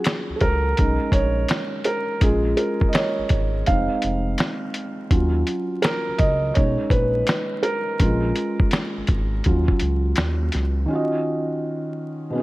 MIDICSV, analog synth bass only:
0, 0, Header, 1, 2, 480
1, 0, Start_track
1, 0, Key_signature, -6, "minor"
1, 0, Tempo, 722892
1, 1473, Time_signature, 4, 2, 24, 8
1, 8250, End_track
2, 0, Start_track
2, 0, Title_t, "Analog synth bass"
2, 0, Program_c, 0, 38
2, 197, Note_on_c, 0, 37, 49
2, 229, Note_off_c, 0, 37, 0
2, 278, Note_on_c, 0, 37, 83
2, 491, Note_off_c, 0, 37, 0
2, 528, Note_on_c, 0, 35, 112
2, 660, Note_off_c, 0, 35, 0
2, 679, Note_on_c, 0, 34, 45
2, 711, Note_off_c, 0, 34, 0
2, 749, Note_on_c, 0, 34, 89
2, 966, Note_off_c, 0, 34, 0
2, 1475, Note_on_c, 0, 34, 100
2, 1690, Note_off_c, 0, 34, 0
2, 2116, Note_on_c, 0, 32, 49
2, 2148, Note_off_c, 0, 32, 0
2, 2197, Note_on_c, 0, 32, 81
2, 2411, Note_off_c, 0, 32, 0
2, 2447, Note_on_c, 0, 29, 106
2, 2579, Note_off_c, 0, 29, 0
2, 2598, Note_on_c, 0, 29, 46
2, 2630, Note_off_c, 0, 29, 0
2, 2685, Note_on_c, 0, 29, 91
2, 2895, Note_off_c, 0, 29, 0
2, 3395, Note_on_c, 0, 39, 100
2, 3610, Note_off_c, 0, 39, 0
2, 4040, Note_on_c, 0, 37, 44
2, 4072, Note_off_c, 0, 37, 0
2, 4118, Note_on_c, 0, 37, 92
2, 4331, Note_off_c, 0, 37, 0
2, 4369, Note_on_c, 0, 35, 102
2, 4500, Note_off_c, 0, 35, 0
2, 4521, Note_on_c, 0, 34, 48
2, 4552, Note_off_c, 0, 34, 0
2, 4587, Note_on_c, 0, 34, 98
2, 4805, Note_off_c, 0, 34, 0
2, 5316, Note_on_c, 0, 34, 103
2, 5530, Note_off_c, 0, 34, 0
2, 5961, Note_on_c, 0, 32, 44
2, 5992, Note_off_c, 0, 32, 0
2, 6038, Note_on_c, 0, 32, 93
2, 6251, Note_off_c, 0, 32, 0
2, 6287, Note_on_c, 0, 39, 102
2, 6419, Note_off_c, 0, 39, 0
2, 6434, Note_on_c, 0, 37, 47
2, 6467, Note_off_c, 0, 37, 0
2, 6521, Note_on_c, 0, 37, 84
2, 6733, Note_off_c, 0, 37, 0
2, 6762, Note_on_c, 0, 39, 89
2, 6974, Note_off_c, 0, 39, 0
2, 7006, Note_on_c, 0, 37, 89
2, 7216, Note_off_c, 0, 37, 0
2, 8250, End_track
0, 0, End_of_file